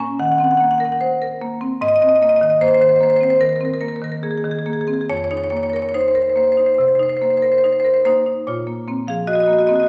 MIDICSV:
0, 0, Header, 1, 2, 480
1, 0, Start_track
1, 0, Key_signature, -5, "minor"
1, 0, Tempo, 806452
1, 1079, Time_signature, 4, 2, 24, 8
1, 2521, Tempo, 852273
1, 4441, Tempo, 819672
1, 5754, End_track
2, 0, Start_track
2, 0, Title_t, "Marimba"
2, 0, Program_c, 0, 12
2, 0, Note_on_c, 0, 46, 92
2, 0, Note_on_c, 0, 58, 69
2, 0, Note_on_c, 0, 80, 104
2, 1, Note_on_c, 0, 61, 73
2, 71, Note_off_c, 0, 58, 0
2, 93, Note_off_c, 0, 46, 0
2, 109, Note_off_c, 0, 80, 0
2, 116, Note_on_c, 0, 51, 75
2, 116, Note_on_c, 0, 78, 96
2, 120, Note_off_c, 0, 61, 0
2, 151, Note_off_c, 0, 78, 0
2, 151, Note_on_c, 0, 78, 78
2, 188, Note_off_c, 0, 78, 0
2, 188, Note_on_c, 0, 78, 86
2, 228, Note_off_c, 0, 78, 0
2, 228, Note_on_c, 0, 78, 79
2, 238, Note_on_c, 0, 60, 66
2, 263, Note_off_c, 0, 78, 0
2, 263, Note_on_c, 0, 78, 87
2, 303, Note_off_c, 0, 78, 0
2, 303, Note_on_c, 0, 78, 77
2, 341, Note_off_c, 0, 78, 0
2, 341, Note_on_c, 0, 78, 82
2, 359, Note_on_c, 0, 58, 64
2, 380, Note_off_c, 0, 78, 0
2, 380, Note_on_c, 0, 78, 79
2, 421, Note_off_c, 0, 78, 0
2, 421, Note_on_c, 0, 78, 85
2, 429, Note_off_c, 0, 60, 0
2, 464, Note_off_c, 0, 78, 0
2, 464, Note_on_c, 0, 78, 80
2, 477, Note_on_c, 0, 70, 75
2, 507, Note_off_c, 0, 78, 0
2, 507, Note_on_c, 0, 78, 81
2, 548, Note_off_c, 0, 78, 0
2, 548, Note_on_c, 0, 78, 76
2, 550, Note_off_c, 0, 58, 0
2, 576, Note_off_c, 0, 78, 0
2, 599, Note_on_c, 0, 72, 77
2, 669, Note_off_c, 0, 70, 0
2, 724, Note_on_c, 0, 70, 68
2, 790, Note_off_c, 0, 72, 0
2, 842, Note_on_c, 0, 58, 75
2, 914, Note_off_c, 0, 70, 0
2, 958, Note_on_c, 0, 60, 67
2, 1032, Note_off_c, 0, 58, 0
2, 1053, Note_off_c, 0, 51, 0
2, 1079, Note_off_c, 0, 60, 0
2, 1079, Note_on_c, 0, 44, 89
2, 1082, Note_on_c, 0, 75, 119
2, 1121, Note_off_c, 0, 75, 0
2, 1121, Note_on_c, 0, 75, 96
2, 1165, Note_off_c, 0, 75, 0
2, 1165, Note_on_c, 0, 75, 97
2, 1200, Note_on_c, 0, 60, 66
2, 1202, Note_off_c, 0, 75, 0
2, 1202, Note_on_c, 0, 75, 96
2, 1243, Note_off_c, 0, 75, 0
2, 1243, Note_on_c, 0, 75, 99
2, 1283, Note_off_c, 0, 75, 0
2, 1283, Note_on_c, 0, 75, 91
2, 1320, Note_on_c, 0, 58, 73
2, 1324, Note_off_c, 0, 75, 0
2, 1324, Note_on_c, 0, 75, 107
2, 1364, Note_off_c, 0, 75, 0
2, 1364, Note_on_c, 0, 75, 99
2, 1390, Note_off_c, 0, 60, 0
2, 1406, Note_off_c, 0, 75, 0
2, 1406, Note_on_c, 0, 75, 100
2, 1436, Note_on_c, 0, 51, 67
2, 1446, Note_off_c, 0, 75, 0
2, 1446, Note_on_c, 0, 75, 91
2, 1488, Note_off_c, 0, 75, 0
2, 1488, Note_on_c, 0, 75, 97
2, 1509, Note_off_c, 0, 58, 0
2, 1539, Note_off_c, 0, 75, 0
2, 1554, Note_on_c, 0, 58, 70
2, 1555, Note_on_c, 0, 72, 117
2, 1595, Note_off_c, 0, 72, 0
2, 1595, Note_on_c, 0, 72, 98
2, 1627, Note_off_c, 0, 51, 0
2, 1634, Note_off_c, 0, 72, 0
2, 1634, Note_on_c, 0, 72, 101
2, 1673, Note_on_c, 0, 51, 65
2, 1676, Note_off_c, 0, 72, 0
2, 1676, Note_on_c, 0, 72, 96
2, 1720, Note_off_c, 0, 72, 0
2, 1720, Note_on_c, 0, 72, 95
2, 1746, Note_off_c, 0, 58, 0
2, 1762, Note_off_c, 0, 72, 0
2, 1762, Note_on_c, 0, 72, 95
2, 1789, Note_on_c, 0, 58, 65
2, 1805, Note_off_c, 0, 72, 0
2, 1805, Note_on_c, 0, 72, 101
2, 1845, Note_off_c, 0, 72, 0
2, 1845, Note_on_c, 0, 72, 97
2, 1865, Note_off_c, 0, 51, 0
2, 1883, Note_off_c, 0, 72, 0
2, 1883, Note_on_c, 0, 72, 103
2, 1908, Note_on_c, 0, 60, 62
2, 1925, Note_off_c, 0, 72, 0
2, 1925, Note_on_c, 0, 72, 99
2, 1966, Note_off_c, 0, 72, 0
2, 1966, Note_on_c, 0, 72, 100
2, 1983, Note_off_c, 0, 58, 0
2, 2011, Note_off_c, 0, 44, 0
2, 2015, Note_off_c, 0, 72, 0
2, 2027, Note_on_c, 0, 51, 59
2, 2028, Note_on_c, 0, 70, 89
2, 2077, Note_off_c, 0, 70, 0
2, 2077, Note_on_c, 0, 70, 67
2, 2103, Note_off_c, 0, 60, 0
2, 2118, Note_off_c, 0, 70, 0
2, 2118, Note_on_c, 0, 70, 77
2, 2146, Note_on_c, 0, 60, 66
2, 2172, Note_off_c, 0, 70, 0
2, 2172, Note_on_c, 0, 70, 75
2, 2223, Note_off_c, 0, 51, 0
2, 2223, Note_off_c, 0, 70, 0
2, 2223, Note_on_c, 0, 70, 79
2, 2266, Note_off_c, 0, 70, 0
2, 2266, Note_on_c, 0, 70, 72
2, 2271, Note_on_c, 0, 58, 63
2, 2311, Note_off_c, 0, 70, 0
2, 2311, Note_on_c, 0, 70, 73
2, 2343, Note_off_c, 0, 60, 0
2, 2357, Note_off_c, 0, 70, 0
2, 2357, Note_on_c, 0, 70, 72
2, 2391, Note_on_c, 0, 51, 67
2, 2404, Note_off_c, 0, 70, 0
2, 2404, Note_on_c, 0, 70, 73
2, 2451, Note_off_c, 0, 70, 0
2, 2451, Note_on_c, 0, 70, 70
2, 2468, Note_off_c, 0, 58, 0
2, 2497, Note_off_c, 0, 70, 0
2, 2518, Note_on_c, 0, 68, 79
2, 2519, Note_on_c, 0, 58, 62
2, 2561, Note_off_c, 0, 68, 0
2, 2561, Note_on_c, 0, 68, 66
2, 2588, Note_off_c, 0, 51, 0
2, 2599, Note_off_c, 0, 68, 0
2, 2599, Note_on_c, 0, 68, 67
2, 2636, Note_on_c, 0, 51, 58
2, 2643, Note_off_c, 0, 68, 0
2, 2643, Note_on_c, 0, 68, 60
2, 2677, Note_off_c, 0, 68, 0
2, 2677, Note_on_c, 0, 68, 70
2, 2711, Note_off_c, 0, 58, 0
2, 2718, Note_off_c, 0, 68, 0
2, 2718, Note_on_c, 0, 68, 66
2, 2759, Note_off_c, 0, 68, 0
2, 2759, Note_on_c, 0, 68, 68
2, 2761, Note_on_c, 0, 58, 71
2, 2800, Note_off_c, 0, 68, 0
2, 2800, Note_on_c, 0, 68, 66
2, 2833, Note_off_c, 0, 51, 0
2, 2844, Note_off_c, 0, 68, 0
2, 2844, Note_on_c, 0, 68, 68
2, 2877, Note_off_c, 0, 68, 0
2, 2877, Note_on_c, 0, 68, 65
2, 2882, Note_on_c, 0, 60, 65
2, 2916, Note_off_c, 0, 68, 0
2, 2916, Note_on_c, 0, 68, 64
2, 2958, Note_off_c, 0, 58, 0
2, 2958, Note_off_c, 0, 68, 0
2, 2958, Note_on_c, 0, 68, 66
2, 2986, Note_off_c, 0, 68, 0
2, 3005, Note_on_c, 0, 73, 110
2, 3006, Note_off_c, 0, 60, 0
2, 3006, Note_on_c, 0, 41, 77
2, 3047, Note_off_c, 0, 73, 0
2, 3047, Note_on_c, 0, 73, 85
2, 3087, Note_off_c, 0, 73, 0
2, 3087, Note_on_c, 0, 73, 93
2, 3125, Note_off_c, 0, 73, 0
2, 3125, Note_on_c, 0, 73, 88
2, 3127, Note_on_c, 0, 63, 60
2, 3160, Note_off_c, 0, 73, 0
2, 3160, Note_on_c, 0, 73, 96
2, 3198, Note_off_c, 0, 73, 0
2, 3198, Note_on_c, 0, 73, 93
2, 3234, Note_off_c, 0, 73, 0
2, 3234, Note_on_c, 0, 73, 96
2, 3246, Note_on_c, 0, 58, 61
2, 3271, Note_off_c, 0, 73, 0
2, 3271, Note_on_c, 0, 73, 91
2, 3307, Note_off_c, 0, 73, 0
2, 3307, Note_on_c, 0, 73, 94
2, 3320, Note_off_c, 0, 63, 0
2, 3343, Note_off_c, 0, 73, 0
2, 3343, Note_on_c, 0, 73, 90
2, 3365, Note_on_c, 0, 70, 70
2, 3380, Note_off_c, 0, 73, 0
2, 3380, Note_on_c, 0, 73, 93
2, 3414, Note_off_c, 0, 73, 0
2, 3414, Note_on_c, 0, 73, 93
2, 3439, Note_off_c, 0, 58, 0
2, 3451, Note_off_c, 0, 73, 0
2, 3451, Note_on_c, 0, 73, 91
2, 3468, Note_off_c, 0, 73, 0
2, 3483, Note_on_c, 0, 72, 90
2, 3484, Note_on_c, 0, 63, 78
2, 3518, Note_off_c, 0, 72, 0
2, 3518, Note_on_c, 0, 72, 75
2, 3557, Note_off_c, 0, 70, 0
2, 3559, Note_off_c, 0, 72, 0
2, 3559, Note_on_c, 0, 72, 77
2, 3599, Note_off_c, 0, 72, 0
2, 3599, Note_on_c, 0, 72, 69
2, 3600, Note_on_c, 0, 70, 67
2, 3639, Note_off_c, 0, 72, 0
2, 3639, Note_on_c, 0, 72, 78
2, 3676, Note_off_c, 0, 63, 0
2, 3681, Note_off_c, 0, 72, 0
2, 3681, Note_on_c, 0, 72, 69
2, 3717, Note_on_c, 0, 58, 59
2, 3724, Note_off_c, 0, 72, 0
2, 3724, Note_on_c, 0, 72, 79
2, 3764, Note_off_c, 0, 72, 0
2, 3764, Note_on_c, 0, 72, 75
2, 3793, Note_off_c, 0, 70, 0
2, 3807, Note_off_c, 0, 72, 0
2, 3807, Note_on_c, 0, 72, 80
2, 3838, Note_on_c, 0, 63, 62
2, 3849, Note_off_c, 0, 72, 0
2, 3849, Note_on_c, 0, 72, 70
2, 3889, Note_off_c, 0, 72, 0
2, 3889, Note_on_c, 0, 72, 76
2, 3911, Note_off_c, 0, 58, 0
2, 3934, Note_off_c, 0, 72, 0
2, 3934, Note_on_c, 0, 72, 71
2, 3940, Note_off_c, 0, 41, 0
2, 3956, Note_on_c, 0, 48, 60
2, 3971, Note_off_c, 0, 72, 0
2, 3971, Note_on_c, 0, 72, 74
2, 4012, Note_off_c, 0, 72, 0
2, 4012, Note_on_c, 0, 72, 73
2, 4032, Note_off_c, 0, 63, 0
2, 4051, Note_off_c, 0, 72, 0
2, 4051, Note_on_c, 0, 72, 73
2, 4075, Note_on_c, 0, 63, 68
2, 4094, Note_off_c, 0, 72, 0
2, 4094, Note_on_c, 0, 72, 73
2, 4131, Note_off_c, 0, 72, 0
2, 4131, Note_on_c, 0, 72, 77
2, 4151, Note_off_c, 0, 48, 0
2, 4172, Note_off_c, 0, 72, 0
2, 4172, Note_on_c, 0, 72, 71
2, 4198, Note_on_c, 0, 58, 58
2, 4211, Note_off_c, 0, 72, 0
2, 4211, Note_on_c, 0, 72, 73
2, 4249, Note_off_c, 0, 72, 0
2, 4249, Note_on_c, 0, 72, 73
2, 4270, Note_off_c, 0, 63, 0
2, 4288, Note_off_c, 0, 72, 0
2, 4288, Note_on_c, 0, 72, 77
2, 4316, Note_on_c, 0, 70, 67
2, 4329, Note_off_c, 0, 72, 0
2, 4329, Note_on_c, 0, 72, 72
2, 4369, Note_off_c, 0, 72, 0
2, 4369, Note_on_c, 0, 72, 80
2, 4390, Note_off_c, 0, 58, 0
2, 4406, Note_off_c, 0, 72, 0
2, 4406, Note_on_c, 0, 72, 75
2, 4438, Note_on_c, 0, 63, 62
2, 4447, Note_off_c, 0, 72, 0
2, 4447, Note_on_c, 0, 72, 75
2, 4488, Note_off_c, 0, 72, 0
2, 4488, Note_on_c, 0, 72, 71
2, 4511, Note_off_c, 0, 70, 0
2, 4530, Note_off_c, 0, 72, 0
2, 4530, Note_on_c, 0, 72, 81
2, 4558, Note_on_c, 0, 70, 67
2, 4570, Note_off_c, 0, 72, 0
2, 4570, Note_on_c, 0, 72, 70
2, 4613, Note_off_c, 0, 72, 0
2, 4613, Note_on_c, 0, 72, 75
2, 4636, Note_off_c, 0, 63, 0
2, 4660, Note_off_c, 0, 72, 0
2, 4680, Note_on_c, 0, 58, 68
2, 4680, Note_on_c, 0, 72, 97
2, 4688, Note_on_c, 0, 63, 66
2, 4757, Note_off_c, 0, 70, 0
2, 4797, Note_off_c, 0, 63, 0
2, 4804, Note_on_c, 0, 63, 62
2, 4877, Note_off_c, 0, 58, 0
2, 4915, Note_off_c, 0, 72, 0
2, 4924, Note_on_c, 0, 46, 74
2, 4926, Note_off_c, 0, 63, 0
2, 4926, Note_on_c, 0, 73, 84
2, 4932, Note_on_c, 0, 65, 62
2, 5041, Note_on_c, 0, 58, 55
2, 5155, Note_off_c, 0, 58, 0
2, 5162, Note_on_c, 0, 58, 59
2, 5165, Note_on_c, 0, 60, 59
2, 5264, Note_off_c, 0, 65, 0
2, 5270, Note_off_c, 0, 73, 0
2, 5271, Note_off_c, 0, 58, 0
2, 5273, Note_off_c, 0, 60, 0
2, 5278, Note_on_c, 0, 53, 56
2, 5283, Note_on_c, 0, 77, 90
2, 5292, Note_on_c, 0, 68, 65
2, 5395, Note_on_c, 0, 75, 99
2, 5396, Note_on_c, 0, 66, 82
2, 5399, Note_off_c, 0, 68, 0
2, 5403, Note_off_c, 0, 77, 0
2, 5429, Note_off_c, 0, 75, 0
2, 5429, Note_on_c, 0, 75, 84
2, 5442, Note_off_c, 0, 66, 0
2, 5442, Note_on_c, 0, 66, 69
2, 5471, Note_off_c, 0, 75, 0
2, 5471, Note_on_c, 0, 75, 83
2, 5490, Note_off_c, 0, 66, 0
2, 5490, Note_on_c, 0, 66, 67
2, 5504, Note_off_c, 0, 75, 0
2, 5504, Note_on_c, 0, 75, 75
2, 5515, Note_on_c, 0, 58, 56
2, 5532, Note_off_c, 0, 66, 0
2, 5532, Note_on_c, 0, 66, 67
2, 5545, Note_off_c, 0, 75, 0
2, 5545, Note_on_c, 0, 75, 85
2, 5577, Note_off_c, 0, 66, 0
2, 5577, Note_on_c, 0, 66, 70
2, 5588, Note_off_c, 0, 75, 0
2, 5588, Note_on_c, 0, 75, 82
2, 5624, Note_off_c, 0, 66, 0
2, 5624, Note_on_c, 0, 66, 62
2, 5627, Note_off_c, 0, 75, 0
2, 5627, Note_on_c, 0, 75, 88
2, 5628, Note_off_c, 0, 58, 0
2, 5635, Note_on_c, 0, 58, 51
2, 5638, Note_on_c, 0, 60, 59
2, 5662, Note_off_c, 0, 53, 0
2, 5665, Note_off_c, 0, 75, 0
2, 5665, Note_on_c, 0, 75, 77
2, 5677, Note_off_c, 0, 66, 0
2, 5677, Note_on_c, 0, 66, 71
2, 5702, Note_off_c, 0, 75, 0
2, 5702, Note_on_c, 0, 75, 87
2, 5721, Note_off_c, 0, 66, 0
2, 5721, Note_on_c, 0, 66, 62
2, 5744, Note_off_c, 0, 58, 0
2, 5746, Note_off_c, 0, 60, 0
2, 5754, Note_off_c, 0, 46, 0
2, 5754, Note_off_c, 0, 66, 0
2, 5754, Note_off_c, 0, 75, 0
2, 5754, End_track
0, 0, End_of_file